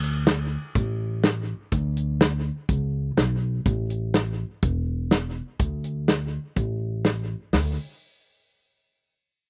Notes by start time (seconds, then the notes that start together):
Already playing: D2
0.03 closed hi-hat
0.27 snare, closed hi-hat
0.75 A1, kick, closed hi-hat
1.24 snare, closed hi-hat
1.72 D2, kick, closed hi-hat
1.97 closed hi-hat
2.21 snare, closed hi-hat
2.69 C#2, kick, closed hi-hat
3.17 B1, snare, closed hi-hat
3.66 A1, kick, closed hi-hat
3.90 closed hi-hat
4.14 snare, closed hi-hat
4.63 E1, kick, closed hi-hat
5.11 snare, closed hi-hat
5.59 D2, kick, closed hi-hat
5.84 closed hi-hat
6.08 snare, closed hi-hat
6.56 A1, kick, closed hi-hat
7.05 snare, closed hi-hat
7.53 D2, snare, open hi-hat